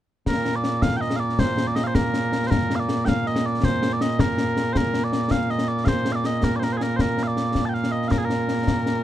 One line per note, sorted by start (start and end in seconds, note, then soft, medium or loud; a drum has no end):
0.26 9.04 A#2 medium
0.26 9.04 A#3 medium
0.26 0.56 A#4 medium
0.26 concert bass drum medium
0.26 snare medium
0.45 snare medium
0.56 0.63 D5 medium
0.63 0.82 D5 loud
0.63 snare medium
0.82 0.97 F5 loud
0.82 concert bass drum medium
0.82 snare loud
0.97 1.01 G5 medium
1.01 1.16 D#5 medium
1.01 snare soft
1.10 snare medium
1.16 1.39 D5 medium
1.16 1.20 F5 medium
1.29 snare soft
1.39 1.67 C5 medium
1.39 concert bass drum medium
1.39 snare loud
1.58 snare medium
1.67 1.76 D5 medium
1.76 1.84 D#5 loud
1.76 snare medium
1.84 1.95 C5 medium
1.84 1.87 F5 medium
1.95 2.47 A#4 medium
1.95 concert bass drum medium
1.95 snare loud
2.14 snare medium
2.32 snare medium
2.47 2.76 A#4 medium
2.47 2.50 C5 medium
2.51 concert bass drum medium
2.51 snare loud
2.70 snare medium
2.76 2.80 F5 medium
2.80 2.89 D5 medium
2.89 3.05 D5 medium
2.89 snare medium
3.05 3.27 F5 loud
3.05 3.08 G5 loud
3.05 concert bass drum medium
3.05 snare loud
3.26 3.46 D#5 medium
3.26 snare soft
3.36 snare medium
3.46 3.65 D5 medium
3.54 snare soft
3.63 3.93 C5 medium
3.63 concert bass drum medium
3.63 snare loud
3.83 snare medium
3.93 4.02 D5 medium
4.01 4.20 D#5 loud
4.01 snare medium
4.19 4.73 A#4 medium
4.19 concert bass drum medium
4.19 snare loud
4.38 snare medium
4.57 snare medium
4.73 4.77 C5 medium
4.73 concert bass drum medium
4.73 snare loud
4.77 5.04 A#4 medium
4.94 snare medium
5.04 5.12 D5 medium
5.12 5.31 D5 medium
5.12 snare medium
5.31 5.50 F5 medium
5.31 concert bass drum medium
5.31 snare loud
5.49 5.68 D#5 medium
5.49 snare soft
5.59 snare medium
5.68 5.85 D5 medium
5.78 snare soft
5.85 6.12 C5 medium
5.85 5.88 F5 medium
5.85 concert bass drum medium
5.85 snare loud
6.05 snare medium
6.12 6.26 D5 medium
6.12 6.16 F5 medium
6.24 6.44 D#5 medium
6.24 snare medium
6.43 6.56 A#4 medium
6.43 concert bass drum soft
6.43 snare medium
6.56 6.63 C5 medium
6.56 6.59 D5 medium
6.62 6.73 A#4 medium
6.62 snare medium
6.73 6.77 C5 medium
6.77 6.82 G#4 medium
6.77 snare medium
6.82 6.96 A#4 medium
6.96 7.01 C5 medium
6.96 concert bass drum soft
6.96 snare medium
7.01 7.23 A#4 medium
7.18 snare medium
7.23 7.27 F5 medium
7.27 7.36 D5 medium
7.36 7.65 D5 medium
7.36 snare medium
7.55 concert bass drum soft
7.55 snare medium
7.65 7.74 G5 medium
7.65 7.69 A5 medium
7.74 7.92 F5 medium
7.74 snare soft
7.84 snare medium
7.92 8.08 D#5 medium
8.02 snare soft
8.08 8.18 A#4 medium
8.08 8.11 F5 medium
8.08 concert bass drum medium
8.08 snare medium
8.18 8.25 G#4 medium
8.25 9.04 A#4 medium
8.30 snare medium
8.49 snare medium
8.67 concert bass drum medium
8.67 snare medium
8.86 snare medium